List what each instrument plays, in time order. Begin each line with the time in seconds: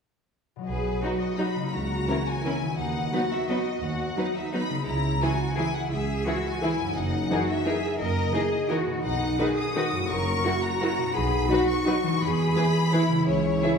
0.56 harp B2 F#3
0.61 harp F#4 D#5
0.68 double bass section B1, cello section G#4, violin section B4
1.02 viola section F#3 D#4, violin section D#4 F#4, cello section F#4
1.20 violin section D#5
1.38 viola section F#3 D#4, violin section D#4 F#4 B5, cello section D#4
1.55 harp C#3
1.60 harp A#3
1.64 harp E4, violin section B5
1.69 harp E5
1.73 double bass section C#2, cello section F#4, violin section A#5
2.08 viola section E3 C#4, violin section E4 A#4
2.26 violin section G#5
2.45 viola section E3 C#4, cello section E4, violin section E4 A#4
2.61 harp D#3
2.65 harp B3
2.69 harp F#4
2.74 double bass section D#2, harp D#5, violin section F#5
2.79 cello section D#4
3.12 viola section F#3 B3, violin section D#4 B4, cello section F#4
3.32 violin section E5
3.48 viola section F#3 B3, violin section D#4 B4 D#5
3.82 double bass section D#2, cello section F#4, violin section F#5
4.17 viola section F#3 B3, violin section D#4 B4, cello section D#4
4.35 violin section E5
4.53 viola section F#3 B3, violin section D#4 B4 B5
4.69 harp C#3
4.74 harp G#3
4.78 harp E4
4.83 harp G#4, violin section A#5
4.87 double bass section C#2, cello section E4
5.22 viola section E3 E4, violin section E4 G#4 G#5, cello section F#4
5.56 viola section E3 E4, violin section E4 G#4 G#5, cello section E4
5.74 violin section F#5
5.91 double bass section C#2, cello section G#4, violin section E5
6.26 viola section E3 E4, violin section E4 G#4, cello section F#4
6.46 violin section G#5
6.62 viola section E3 E4, cello section E4, violin section E4 G#4
6.79 harp F#2
6.83 harp A#3
6.88 harp D#4
6.92 double bass section F#1, harp G#4
6.96 cello section D#4, violin section F#5
7.31 viola section E3 D#4, cello section F#4, violin section G#4 A#4
7.49 violin section E5
7.66 viola section E3 D#4, violin section G#4 A#4, cello section G#4
8.00 double bass section F#1, cello section A#4, violin section D#5
8.33 viola section E3 D#4, cello section G#4, violin section G#4 A#4
8.69 viola section E3 D#4, cello section F#4, violin section G#4 A#4
8.86 harp B2
8.91 harp B3
8.95 harp D#4
9.00 harp F#4, violin section F#5
9.04 double bass section B1, cello section D#4
9.39 viola section D#3 D#4, violin section F#4 B4, cello section G#4
9.58 violin section D#6
9.76 viola section D#3 D#4, violin section F#4 B4, cello section F#4
9.91 harp F#2
9.96 harp A#3
10.01 harp E4
10.05 harp F#4, violin section C#6
10.10 double bass section F#1, cello section A#4
10.45 viola section F#3 E4, violin section F#4 A#4, cello section F#4
10.63 violin section A#5
10.81 viola section F#3 E4, violin section F#4 A#4
10.98 harp B2
11.02 harp B3
11.07 harp D#4
11.11 harp F#4
11.15 double bass section B1, cello section G#4, violin section B5
11.50 viola section F#3 D#4, cello section F#4, violin section F#4 B4
11.69 violin section C#6
11.86 viola section F#3 D#4, violin section F#4 B4
12.03 harp E3
12.07 harp G#3
12.12 harp E4
12.16 harp G#4
12.21 double bass section E2, cello section G#4, violin section B5
12.55 viola section E3 E4, violin section G#4 B4
12.92 viola section E3 E4, cello section E4, violin section G#4 B4
13.09 harp C#3
13.14 harp G#3
13.18 harp E4
13.22 harp G#4
13.27 double bass section C#2, violin section C#5
13.63 viola section E3 E4, violin section G#4 E5